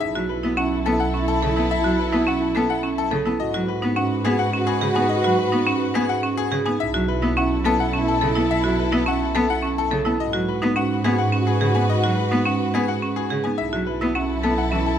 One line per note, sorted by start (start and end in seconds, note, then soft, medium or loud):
0.00 3.25 B1 medium
0.00 3.22 E4 medium
0.00 0.22 E4 soft
0.00 3.22 A4 medium
0.00 0.19 E5 loud
0.15 0.26 F#3 medium
0.15 0.33 F#4 medium
0.29 0.52 E4 medium
0.29 0.48 B4 medium
0.43 0.54 B3 medium
0.43 0.62 E4 medium
0.57 0.76 C#4 loud
0.57 0.76 F#5 medium
0.61 0.81 E4 medium
0.86 0.97 B3 loud
0.86 1.04 A4 medium
0.86 1.04 A4 loud
0.90 1.10 E4 medium
1.00 1.18 F#5 medium
1.14 1.32 C#4 medium
1.20 1.40 E4 medium
1.28 1.46 A4 loud
1.42 1.53 C#3 medium
1.42 1.61 A4 medium
1.49 1.70 E4 medium
1.56 1.67 B3 medium
1.56 1.75 E4 medium
1.56 1.75 A5 medium
1.71 1.89 E5 loud
1.78 1.99 E4 medium
1.84 1.95 F#3 medium
1.84 2.03 F#4 medium
1.99 2.17 B4 medium
2.08 2.23 B3 medium
2.08 2.29 E4 medium
2.13 2.31 E4 medium
2.27 2.45 C#4 loud
2.27 2.46 F#5 medium
2.38 2.58 E4 medium
2.55 2.66 B3 loud
2.55 2.74 A4 medium
2.55 2.74 A4 loud
2.67 2.88 E4 medium
2.67 2.88 F#5 medium
2.83 3.02 C#4 medium
2.97 3.17 E4 soft
2.97 3.16 A4 loud
3.11 3.22 C#3 medium
3.11 3.30 A4 loud
3.25 3.36 B3 medium
3.25 3.44 E4 medium
3.25 3.45 A5 medium
3.40 6.65 G#2 medium
3.40 3.61 F#4 soft
3.40 6.62 F#4 medium
3.40 6.62 B4 medium
3.40 3.59 D#5 loud
3.54 3.65 F#3 medium
3.54 3.73 F#4 loud
3.68 3.90 F#4 medium
3.68 3.87 B4 medium
3.82 3.93 B3 medium
3.82 4.01 D#4 medium
3.96 4.15 C#4 loud
3.96 4.20 F#4 medium
3.96 4.15 F#5 medium
4.25 4.35 B3 loud
4.25 4.49 F#4 medium
4.25 4.43 G#4 medium
4.25 4.43 G#4 loud
4.39 4.58 F#5 medium
4.53 4.72 C#4 medium
4.53 4.79 F#4 medium
4.67 4.86 G#4 loud
4.81 4.92 C#3 medium
4.81 5.00 G#4 loud
4.87 5.08 F#4 loud
4.95 5.06 B3 medium
4.95 5.14 D#4 medium
4.95 5.14 G#5 medium
5.09 5.28 D#5 loud
5.17 5.38 F#4 loud
5.24 5.35 F#3 medium
5.24 5.43 F#4 loud
5.39 5.57 B4 medium
5.47 5.68 F#4 medium
5.52 5.63 B3 medium
5.52 5.71 D#4 medium
5.67 5.85 C#4 loud
5.67 5.85 F#5 medium
5.77 5.98 F#4 medium
5.94 6.05 B3 loud
5.94 6.14 G#4 loud
5.94 6.14 G#4 medium
6.07 6.28 F#4 medium
6.07 6.28 F#5 medium
6.23 6.42 C#4 medium
6.36 6.57 F#4 medium
6.36 6.56 G#4 loud
6.51 6.62 C#3 medium
6.51 6.70 G#4 loud
6.65 6.76 B3 medium
6.65 6.84 D#4 medium
6.65 6.84 G#5 medium
6.80 10.04 B1 medium
6.80 10.01 E4 medium
6.80 7.01 E4 soft
6.80 10.01 A4 medium
6.80 6.98 E5 loud
6.94 7.05 F#3 medium
6.94 7.13 F#4 loud
7.08 7.30 E4 medium
7.08 7.27 B4 medium
7.22 7.33 B3 loud
7.22 7.41 E4 medium
7.37 7.55 C#4 loud
7.37 7.60 E4 medium
7.37 7.55 F#5 medium
7.64 7.75 B3 loud
7.64 7.83 A4 medium
7.64 7.84 A4 loud
7.69 7.90 E4 medium
7.80 7.98 F#5 medium
7.93 8.12 C#4 medium
7.99 8.19 E4 medium
8.08 8.26 A4 medium
8.21 8.32 C#3 medium
8.21 8.40 A4 medium
8.27 8.48 E4 medium
8.35 8.46 B3 medium
8.35 8.54 E4 medium
8.35 8.54 A5 medium
8.51 8.69 E5 loud
8.57 8.78 E4 medium
8.64 8.74 F#3 medium
8.64 8.82 F#4 medium
8.79 8.97 B4 medium
8.86 9.07 E4 medium
8.92 9.03 B3 loud
8.92 9.11 E4 medium
9.06 9.25 C#4 loud
9.06 9.25 F#5 medium
9.17 9.37 E4 medium
9.35 9.45 B3 loud
9.35 9.53 A4 medium
9.35 9.53 A4 loud
9.46 9.67 E4 medium
9.46 9.68 F#5 medium
9.63 9.81 C#4 medium
9.77 9.97 E4 soft
9.77 9.96 A4 loud
9.91 10.02 C#3 medium
9.91 10.10 A4 loud
10.05 10.16 B3 medium
10.05 10.24 E4 medium
10.05 10.24 A5 medium
10.19 13.44 G#2 medium
10.19 10.40 F#4 soft
10.19 13.41 F#4 medium
10.19 13.41 B4 medium
10.19 10.38 D#5 medium
10.33 10.44 F#3 medium
10.33 10.52 F#4 loud
10.48 10.70 F#4 medium
10.48 10.67 B4 medium
10.62 10.73 B3 loud
10.62 10.80 D#4 medium
10.76 10.95 C#4 loud
10.76 11.00 F#4 medium
10.76 10.95 F#5 medium
11.04 11.15 B3 loud
11.04 11.29 F#4 medium
11.04 11.23 G#4 loud
11.04 11.23 G#4 medium
11.18 11.37 F#5 medium
11.32 11.51 C#4 medium
11.38 11.59 F#4 medium
11.47 11.65 G#4 medium
11.61 11.71 C#3 medium
11.61 11.79 G#4 loud
11.68 11.88 F#4 medium
11.75 11.86 B3 medium
11.75 11.94 D#4 medium
11.75 11.94 G#5 medium
11.90 12.08 D#5 loud
11.96 12.17 F#4 medium
12.04 12.14 F#3 medium
12.04 12.22 F#4 loud
12.18 12.36 B4 medium
12.26 12.47 F#4 medium
12.31 12.42 B3 loud
12.31 12.50 D#4 medium
12.45 12.64 C#4 loud
12.45 12.64 F#5 medium
12.56 12.77 F#4 medium
12.74 12.85 B3 loud
12.74 12.93 G#4 medium
12.86 13.06 F#4 medium
12.86 13.07 F#5 medium
13.02 13.21 C#4 medium
13.16 13.36 F#4 soft
13.16 13.35 G#4 medium
13.30 13.42 C#3 medium
13.30 13.49 G#4 loud
13.44 13.56 B3 medium
13.44 13.63 D#4 medium
13.44 13.63 G#5 medium
13.58 14.99 B1 medium
13.58 13.80 E4 soft
13.58 14.99 E4 medium
13.58 14.99 A4 medium
13.58 13.77 E5 medium
13.73 13.84 F#3 medium
13.73 13.92 F#4 medium
13.87 14.09 E4 medium
13.87 14.06 B4 medium
14.01 14.12 B3 medium
14.01 14.20 E4 medium
14.15 14.34 C#4 medium
14.15 14.39 E4 medium
14.15 14.34 F#5 medium
14.43 14.54 B3 medium
14.43 14.62 A4 medium
14.48 14.68 E4 medium
14.58 14.77 F#5 medium
14.71 14.82 E3 medium
14.71 14.91 C#4 medium
14.78 14.98 E4 medium
14.86 14.99 A4 medium